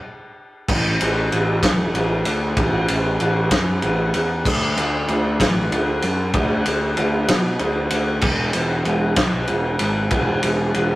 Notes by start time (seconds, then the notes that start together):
0.69 A1, kick, crash
1.01 A1, ride
1.32 A1, ride
1.63 E1, kick, snare, ride
1.94 A1, ride
2.25 D2, ride
2.57 A1, kick, ride
2.88 A1, ride
3.20 A1, ride
3.51 F#2, kick, snare, ride
3.82 A1, ride
4.14 E2, ride
4.45 D2, kick, crash
4.77 D2, ride
5.08 D2, ride
5.40 A1, kick, snare, ride
5.72 D2, ride
6.02 F#2, ride
6.34 D2, kick, ride
6.66 D2, ride
6.97 D2, ride
7.28 B2, snare, ride
7.59 D2, ride
7.90 D2, ride
8.21 E1, kick, crash
8.53 E1, ride
8.85 E1, ride
9.16 B1, kick, snare, ride
9.47 E1, ride
9.79 G#1, ride
10.11 E1, kick, ride
10.43 E1, ride
10.74 E1, ride